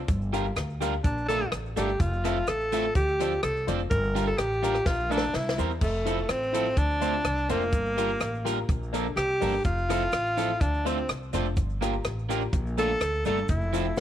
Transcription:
0.08 upright bass G1, kick, closed hi-hat, cabasa
0.33 clean electric guitar G3 D4 F4 A#4, upright piano G4 A#4 F5, closed hi-hat, cabasa
0.56 upright bass D2, upright piano A#4 F5, cross-stick, closed hi-hat, cabasa
0.81 clean electric guitar G3 D4 F4 A#4, upright piano G4 A#4 F5, closed hi-hat, cabasa
1.04 upright bass A#1, tenor saxophone D4, kick, closed hi-hat, cabasa
1.28 clean electric guitar A3 D4 F4 A4, upright piano A4 A#4 D5, tenor saxophone A4, closed hi-hat, cabasa
1.52 upright bass A1, cross-stick, closed hi-hat, cabasa
1.76 upright bass G1, clean electric guitar A3 D4 F4 A4, tenor saxophone G4, upright piano A4 A#4 D5, closed hi-hat, cabasa
2.00 upright bass F1, tenor saxophone F4, kick, closed hi-hat, cabasa
2.24 clean electric guitar A3 C4 E4 A4, upright piano F4 A4 E5, cross-stick, closed hi-hat, cabasa
2.47 upright bass A1, upright piano A4 E5, tenor saxophone A4, cross-stick, closed hi-hat, cabasa
2.72 clean electric guitar A3 C4 E4 A4, upright piano F4 A4 E5, closed hi-hat, cabasa
2.95 upright bass D2, tenor saxophone G4, kick, closed hi-hat, cabasa
3.20 clean electric guitar F3 C4 D4 A4, upright piano F4 C5 D5, closed hi-hat, cabasa
3.43 upright bass C2, tenor saxophone A4, cross-stick, closed hi-hat, cabasa
3.67 upright bass F1, clean electric guitar F3 C4 D4 A4, upright piano F4 C5 D5, closed hi-hat, cabasa
3.90 upright bass G1, tenor saxophone A#4, kick, closed hi-hat, cabasa
4.15 clean electric guitar G3 D4 F4 A#4, upright piano F4 G4 A#4, closed hi-hat, cabasa
4.27 tenor saxophone A4
4.38 upright bass A1, tenor saxophone G4, cross-stick, closed hi-hat, cabasa
4.62 clean electric guitar G3 D4 F4 A#4, upright piano F4 G4 A#4, closed hi-hat, cabasa
4.74 cross-stick
4.86 upright bass A#1, tenor saxophone F4, kick, snare, cabasa
5.10 clean electric guitar A3 D4 F4 A4, upright piano D4 A4 A#4, tenor saxophone D4, cabasa
5.18 snare
5.34 upright bass C2, tenor saxophone E4, snare, cabasa
5.49 snare
5.58 upright bass E2, clean electric guitar G3 C4 E4 A#4, upright piano E4 A#4 C5, cabasa
5.81 upright bass F1, tenor saxophone A3, kick, crash, cabasa
6.05 clean electric guitar F3 C4 E4 A4, upright piano E4 F4 A4, closed hi-hat, cabasa
6.28 upright bass A1, tenor saxophone C4, upright piano F4 A4, cross-stick, closed hi-hat, cabasa
6.53 clean electric guitar F3 C4 E4 A4, upright piano E4 F4 A4, closed hi-hat, cabasa
6.76 upright bass D2, tenor saxophone D4, muted clean electric guitar stroke, kick, closed hi-hat, cabasa
7.00 clean electric guitar A3 C4 F4 A4, upright piano D4 F4 C5, closed hi-hat, cabasa
7.24 upright bass C2, cross-stick, closed hi-hat, cabasa
7.49 upright bass F1, clean electric guitar A3 C4 F4 A4, tenor saxophone A#3, upright piano D4 F4 C5, closed hi-hat, cabasa
7.72 upright bass G1, kick, closed hi-hat, cabasa
7.97 clean electric guitar G3 D4 F4 A#4, upright piano F4 G4 A#4, closed hi-hat, cabasa
8.20 upright bass A1, upright piano G4 A#4, cross-stick, closed hi-hat, cabasa
8.44 clean electric guitar G3 D4 F4 A#4, upright piano F4 G4 A#4, closed hi-hat, cabasa
8.69 upright bass A#1, kick, closed hi-hat, cabasa
8.93 clean electric guitar F3 A#3 D4 A4, upright piano D4 A4 A#4, closed hi-hat, cabasa
9.16 upright bass C2, tenor saxophone G4, cross-stick, closed hi-hat, cabasa
9.41 upright bass G1, clean electric guitar F3 A#3 D4 A4, upright piano D4 A4 A#4, open hi-hat, cabasa
9.64 upright bass F1, tenor saxophone F4, kick, closed hi-hat, cabasa
9.89 clean electric guitar F3 C4 E4 A4, upright piano E4 F4 A4, cross-stick, closed hi-hat, cabasa
10.12 upright bass A1, cross-stick, closed hi-hat, cabasa
10.37 clean electric guitar F3 C4 E4 A4, upright piano E4 F4 A4, closed hi-hat, cabasa
10.61 upright bass D2, tenor saxophone D4, kick, closed hi-hat, cabasa
10.85 clean electric guitar A3 C4 F4 A4, tenor saxophone C4, upright piano D4 F4 C5, closed hi-hat, cabasa
11.09 upright bass C2, cross-stick, closed hi-hat, cabasa
11.33 upright bass F1, clean electric guitar A3 C4 F4 A4, upright piano D4 F4 C5, closed hi-hat, cabasa
11.57 upright bass G1, kick, closed hi-hat, cabasa
11.81 upright piano A#3 F4 G4, clean electric guitar A#3 D4 F4 A#4, cross-stick, closed hi-hat, cabasa
12.04 upright bass A1, upright piano F4 G4, cross-stick, closed hi-hat, cabasa
12.29 upright piano A#3 F4 G4, clean electric guitar A#3 D4 F4 A#4, closed hi-hat, cabasa
12.53 upright bass A#1, kick, closed hi-hat, cabasa
12.77 clean electric guitar A3 D4 F4 A4, upright piano A#3 D4 A4, tenor saxophone A4, closed hi-hat, cabasa
13.01 upright bass D2, cross-stick, closed hi-hat, cabasa
13.25 upright bass G1, clean electric guitar A3 D4 F4 A4, upright piano A#3 D4 A4, tenor saxophone A4, closed hi-hat, cabasa
13.48 upright bass F1, tenor saxophone E4, kick, closed hi-hat, cabasa
13.73 clean electric guitar F3 C4 E4 A4, upright piano A3 E4 F4, closed hi-hat, cabasa
13.96 upright bass A1, cabasa

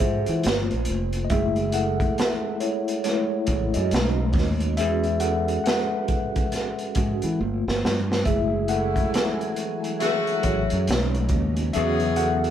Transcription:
Already playing: tine electric piano G#4 A4 E5 F#5
0.00 fingered electric bass G#2, tine electric piano F4 C5, kick
0.26 fingered electric bass E3, closed hi-hat
0.43 fingered electric bass G1, tine electric piano A3 A#3 F4, snare, closed hi-hat
0.71 fingered electric bass A#1, closed hi-hat
0.85 closed hi-hat
0.89 fingered electric bass F1
1.13 closed hi-hat
1.25 tine electric piano D#5
1.30 fingered electric bass F#1, tine electric piano G#3 A3 E4 G#4 E5, kick, closed hi-hat
1.56 closed hi-hat
1.72 tine electric piano A4 F#5, closed hi-hat
2.00 kick, closed hi-hat
2.18 snare, closed hi-hat
2.60 tine electric piano E4 C#5, closed hi-hat
2.88 closed hi-hat
3.04 tine electric piano G#3 A3 E4 C#5, snare, closed hi-hat
3.47 fingered electric bass A1, kick, closed hi-hat
3.74 fingered electric bass F#2, tine electric piano F#4 D#5, closed hi-hat
3.91 fingered electric bass B1, tine electric piano G#3 A3 C#4 D#4, snare, closed hi-hat
4.33 fingered electric bass D#2, kick, open hi-hat
4.38 snare
4.60 closed hi-hat
4.77 fingered electric bass E2, tine electric piano G#3 C#4 F#4 G#4 E5, closed hi-hat
5.04 closed hi-hat
5.20 tine electric piano A4 F#5, closed hi-hat
5.48 closed hi-hat
5.64 tine electric piano B4 F#5, snare, closed hi-hat
6.08 kick, closed hi-hat
6.36 kick, closed hi-hat
6.52 snare, closed hi-hat
6.79 closed hi-hat
6.95 fingered electric bass G#2, tine electric piano G#3 C#4 F#4, kick, closed hi-hat
7.22 fingered electric bass E3, closed hi-hat
7.39 fingered electric bass G1, tine electric piano A3 A#3 F4
7.68 fingered electric bass G1, snare
7.85 fingered electric bass G2, snare
8.12 snare
8.25 fingered electric bass F#1, string machine E3 F#3 G#5, tine electric piano G#3 A3 E4 G#4 E5, kick, closed hi-hat
8.68 horn section C#3 A3 E4, tine electric piano A4 F#5, closed hi-hat
8.96 kick, closed hi-hat
9.14 snare, closed hi-hat
9.41 closed hi-hat
9.56 closed hi-hat
9.84 closed hi-hat
10.00 horn section C#3 A3 F#4, tine electric piano G#4 E5, snare, closed hi-hat
10.27 closed hi-hat
10.43 fingered electric bass A1, tine electric piano F#4 C#5, kick, closed hi-hat
10.70 fingered electric bass F#2, closed hi-hat
10.87 fingered electric bass B1, string machine C#3 B3 D#4, tine electric piano G#3 A3 C#4 D#4, snare, closed hi-hat
11.14 closed hi-hat
11.29 fingered electric bass D#2, kick, closed hi-hat
11.56 closed hi-hat
11.73 fingered electric bass E2, horn section C#3 B3 G#4, string machine F#3, tine electric piano F#3 C#4 F#4 G#4 E5, closed hi-hat
12.00 closed hi-hat
12.16 tine electric piano A4 F#5, closed hi-hat
12.44 closed hi-hat

